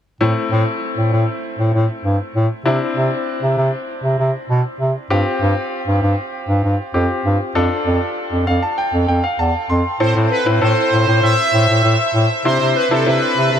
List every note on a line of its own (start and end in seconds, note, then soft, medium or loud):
0.21 0.33 A2 medium
0.21 2.62 A3 medium
0.21 2.62 C4 medium
0.21 2.62 E4 medium
0.51 0.64 A2 loud
0.97 1.10 A2 medium
1.12 1.25 A2 medium
1.58 1.71 A2 medium
1.74 1.86 A2 medium
2.04 2.17 G2 medium
2.35 2.47 A2 medium
2.65 2.78 C3 loud
2.65 5.06 C4 medium
2.65 5.06 D4 medium
2.65 5.06 E4 medium
2.96 3.09 C3 medium
3.42 3.55 C3 medium
3.57 3.70 C3 medium
4.03 4.16 C3 medium
4.19 4.31 C3 medium
4.49 4.62 B2 medium
4.80 4.92 C3 medium
5.10 5.23 G2 loud
5.10 6.90 C4 medium
5.10 6.90 F4 medium
5.10 6.90 G4 medium
5.41 5.54 G2 loud
5.87 5.99 G2 medium
6.02 6.15 G2 medium
6.48 6.61 G2 medium
6.63 6.76 G2 medium
6.94 7.07 F2 medium
6.94 7.55 C4 medium
6.94 7.54 F4 soft
6.94 7.55 G4 medium
7.25 7.37 G2 medium
7.55 7.68 F2 loud
7.55 9.96 D4 medium
7.55 9.96 F4 medium
7.55 9.96 A4 medium
7.86 7.98 F2 medium
8.32 8.44 F2 medium
8.47 8.60 F2 medium
8.47 8.61 F5 medium
8.62 8.77 A5 medium
8.78 9.06 G5 medium
8.93 9.06 F2 medium
9.08 9.21 F2 medium
9.08 9.23 G5 medium
9.24 9.38 F5 medium
9.39 9.51 E2 medium
9.39 9.67 A5 medium
9.70 9.82 F2 medium
9.70 9.98 C6 medium
10.00 10.13 A2 loud
10.00 10.36 C4 medium
10.00 10.36 E4 medium
10.00 10.36 A4 medium
10.00 10.14 C5 medium
10.16 10.28 A2 medium
10.31 10.45 B4 medium
10.46 10.59 A2 medium
10.46 10.58 C4 medium
10.46 10.58 E4 medium
10.46 10.58 B4 medium
10.61 10.74 A2 loud
10.61 11.57 C4 medium
10.61 11.57 E4 medium
10.61 11.57 A4 medium
10.61 11.25 C5 medium
10.92 11.05 A2 medium
11.07 11.20 A2 medium
11.23 11.35 A2 medium
11.23 12.11 E5 loud
11.53 11.66 A2 medium
11.69 11.81 A2 medium
11.84 11.96 A2 medium
12.14 12.27 A2 loud
12.45 12.58 C3 loud
12.45 12.81 C4 medium
12.45 12.81 D4 medium
12.45 12.81 E4 medium
12.45 12.77 C5 medium
12.60 12.73 C3 loud
12.76 12.92 B4 medium
12.91 13.04 C3 loud
12.91 13.03 C4 medium
12.91 13.03 D4 medium
12.91 13.03 E4 medium
12.91 13.05 A4 medium
13.06 13.19 C3 loud
13.06 13.60 C4 medium
13.06 13.60 D4 medium
13.06 13.60 E4 medium
13.06 13.60 B4 medium
13.37 13.49 C3 medium
13.52 13.60 C3 medium